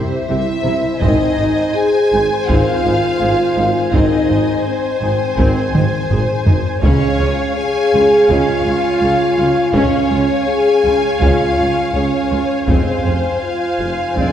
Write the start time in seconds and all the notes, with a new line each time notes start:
Already playing: G4 C5 E5
0.28 C2 C3 E4 G4 E5
0.65 C2 C3 E4
1.01 G#1 G#2 D#3 C4 D#4 C5 D#5 G#5, taiko
1.38 G#1 G#2 D#4
1.75 G#4 G#5
2.12 G#1 G#2 D#4
2.48 G#1 G#2 D#3 C4 F4 F5, taiko
2.84 G#1 G#2 D#4
3.21 G#1 G#2 G#4
3.57 G#1 G#2 D#4
3.93 G#1 G#2 D#3 C4 D#4 C5 D#5 G#5, taiko
4.29 G#1 G#2 D#4
4.66 C4 C5
5.02 G#1 G#2 D#4
5.37 G#1 G#2 D#3 C4, taiko
5.74 G#1 G#2 D#4, taiko mid
6.10 G#1 G#2 G#4, taiko low-mid
6.46 G#1 G#2 D#4, taiko low
6.82 C#2 C#3 G#3 C#4 C#5 F5 G#5, taiko
7.20 C#2 F4
7.56 G#4 G#5
7.94 C#2 F4
8.29 C#2 C#3 G#3 C#4 F4 F5, taiko
8.66 C#2 F4
9.02 C#2 G#4
9.38 C#2 F4
9.74 C#2 C#3 G#3 C#4 C#5 F5 G#5, taiko
10.11 C#2 F4
10.47 G#4 G#5
10.85 C#2 F4
11.21 C#2 C#3 G#3 C#4 F4 F5, taiko
11.58 C#2 F4
11.94 C#2 C#4 G#4 C#5
12.31 C#2 F4
12.67 F1 F2 C3 G#3 C4 C5 F5 G#5, taiko
13.05 F1 F2 F4
13.42 F4 F5
13.79 F1 F2 F4
14.15 F1 F2 C3 G#3 C4 D4 D5, taiko